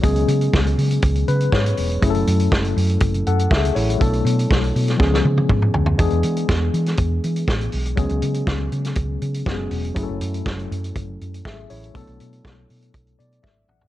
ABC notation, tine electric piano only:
X:1
M:4/4
L:1/8
Q:1/4=121
K:F#m
V:1 name="Tine electric piano"
z4 z B c2 | z4 z [Af] [Ge] [Ec]- | [Ec] z6 z | z8 |
z8 | z6 [Ge] [Ec]- | [Ec] z4 d e f |]
V:2 name="Tine electric piano"
[F,G,B,CG]8 | [F,A,CEGA]8 | [F,A,B,DA]4 [^E,G,B,CG]4 | [E,G,B,DG]8 |
[F,G,B,CG]6 [F,G,B,CFG]2 | [F,A,CEGA]8 | [F,A,B,DA]8 |]